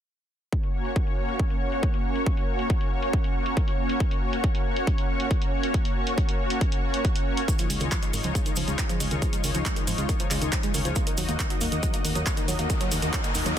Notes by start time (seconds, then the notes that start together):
0.52 A#3 C#4 F#4 C#5, kick
0.63 closed hi-hat
0.74 A#3 C#4 F#4 C#5
0.85 closed hi-hat
0.96 A#3 C#4 F#4 C#5, kick, closed hi-hat
1.07 closed hi-hat
1.18 A#3 C#4 F#4 C#5
1.29 closed hi-hat
1.39 A#3 C#4 F#4 C#5, kick, closed hi-hat
1.50 closed hi-hat
1.61 A#3 C#4 F#4 C#5
1.72 closed hi-hat
1.83 A#3 C#4 F#4 C#5, kick, closed hi-hat
1.94 closed hi-hat
2.05 A#3 C#4 F#4 C#5
2.16 closed hi-hat
2.26 A#3 C#4 F#4 C#5, kick, closed hi-hat
2.37 closed hi-hat
2.48 A#3 C#4 F#4 C#5
2.59 closed hi-hat
2.70 A#3 C#4 F#4 C#5, kick, closed hi-hat
2.81 closed hi-hat
2.92 A#3 C#4 F#4 C#5
3.03 closed hi-hat
3.13 A#3 C#4 F#4 C#5, kick, closed hi-hat
3.24 closed hi-hat
3.35 A#3 C#4 F#4 C#5
3.46 closed hi-hat
3.57 A#3 C#4 F#4 C#5, kick, closed hi-hat
3.68 closed hi-hat
3.79 A#3 C#4 F#4 C#5
3.89 closed hi-hat
4.00 A#3 C#4 F#4 C#5, kick, closed hi-hat
4.11 closed hi-hat
4.22 A#3 C#4 F#4 C#5
4.33 closed hi-hat
4.44 A#3 C#4 F#4 C#5, kick, closed hi-hat
4.55 closed hi-hat
4.66 A#3 C#4 F#4 C#5
4.76 closed hi-hat
4.87 A#3 C#4 F#4 C#5, kick, closed hi-hat
4.98 closed hi-hat
5.09 A#3 C#4 F#4 C#5
5.20 closed hi-hat
5.31 A#3 C#4 F#4 C#5, kick, closed hi-hat
5.42 closed hi-hat
5.53 A#3 C#4 F#4 C#5
5.63 closed hi-hat
5.74 A#3 C#4 F#4 C#5, kick, closed hi-hat
5.85 closed hi-hat
5.96 A#3 C#4 F#4 C#5
6.07 closed hi-hat
6.18 A#3 C#4 F#4 C#5, kick, closed hi-hat
6.29 closed hi-hat
6.39 A#3 C#4 F#4 C#5
6.50 closed hi-hat
6.61 A#3 C#4 F#4 C#5, kick, closed hi-hat
6.72 closed hi-hat
6.83 A#3 C#4 F#4 C#5
6.94 closed hi-hat
7.05 A#3 C#4 F#4 C#5, kick, closed hi-hat
7.16 closed hi-hat
7.26 A#3 C#4 F#4 C#5
7.37 closed hi-hat
7.48 D#3 G#3 D#4 F4 C#5, kick, closed hi-hat, maracas
7.59 F3, closed hi-hat, maracas
7.70 C#2 G#3 D#4 F4 C#5, open hi-hat, maracas
7.80 C#2 D#3, closed hi-hat, maracas
7.91 F3 G#3 D#4 F4 C#5, kick, clap, closed hi-hat, maracas
8.03 G#3, closed hi-hat, maracas
8.13 G#1 D#3 G#3 D#4 F4 C#5, open hi-hat, maracas
8.23 C#2 F3, closed hi-hat, maracas
8.35 G#3 D#4 F4 C#5, kick, closed hi-hat, maracas
8.46 D#3, closed hi-hat, maracas
8.56 C#2 F3 G#3 D#4 F4 C#5, open hi-hat, maracas
8.68 C#2 G#3, closed hi-hat, maracas
8.79 D#3 G#3 D#4 F4 C#5, kick, clap, closed hi-hat, maracas
8.89 F3, closed hi-hat, maracas
9.00 C#2 G#3 D#4 F4 C#5, open hi-hat, maracas
9.11 C#2 D#3, closed hi-hat, maracas
9.22 F3 G#3 D#4 F4 C#5, kick, closed hi-hat, maracas
9.33 G#3, closed hi-hat, maracas
9.44 C#2 D#3 G#3 D#4 F4 C#5, open hi-hat, maracas
9.54 C#2 F3, closed hi-hat, maracas
9.65 G#3 D#4 F4 C#5, kick, clap, closed hi-hat, maracas
9.76 D#3, closed hi-hat, maracas
9.87 G#1 F3 G#3 D#4 F4 C#5, open hi-hat, maracas
9.98 C#2 G#3, closed hi-hat, maracas
10.09 D#3 G#3 D#4 F4 C#5, kick, closed hi-hat, maracas
10.20 F3, closed hi-hat, maracas
10.31 C#2 G#3 D#4 F4 C#5, clap, open hi-hat, maracas
10.42 C#2 D#3, closed hi-hat, maracas
10.52 F3 G#3 D#4 F4 C#5, kick, clap, closed hi-hat, maracas
10.63 G#3, closed hi-hat, maracas
10.74 C#2 D#3 G#3 D#4 F4 C#5, open hi-hat, maracas
10.85 C#2 F3, closed hi-hat, maracas
10.96 A#3 D#4 F#4 D#5, kick, closed hi-hat, riser, maracas
11.07 D#3, closed hi-hat, maracas
11.17 D#2 F#3 A#3 D#4 F#4 D#5, open hi-hat, maracas
11.29 D#2 A#3, closed hi-hat, maracas
11.39 D#3 A#3 D#4 F#4 D#5, kick, clap, closed hi-hat, maracas
11.50 F#3, closed hi-hat, maracas
11.61 D#1 A#3 D#4 F#4 D#5, open hi-hat, maracas
11.72 D#2 D#3, closed hi-hat, maracas
11.83 F#3 A#3 D#4 F#4 D#5, kick, closed hi-hat, maracas
11.94 A#3, closed hi-hat, maracas
12.05 D#2 D#3 A#3 D#4 F#4 D#5, open hi-hat, maracas
12.15 D#2 F#3, closed hi-hat, maracas
12.26 A#3 D#4 F#4 D#5, kick, clap, closed hi-hat, maracas
12.37 D#3, closed hi-hat, maracas
12.48 D#2 F#3 A#3 D#4 F#4 D#5, open hi-hat, maracas
12.59 D#2 A#3, closed hi-hat, maracas
12.70 D#3 A#3 D#4 F#4 D#5, kick, closed hi-hat, maracas
12.80 F#3, closed hi-hat, maracas
12.92 D#2 A#3 D#4 F#4 D#5, open hi-hat, maracas
13.02 D#2 D#3, closed hi-hat, maracas
13.13 F#3 A#3 D#4 F#4 D#5, kick, clap, closed hi-hat, maracas
13.24 A#3, closed hi-hat, maracas
13.35 D#1 D#3 A#3 D#4 F#4 D#5, open hi-hat, maracas
13.46 D#2 F#3, closed hi-hat, maracas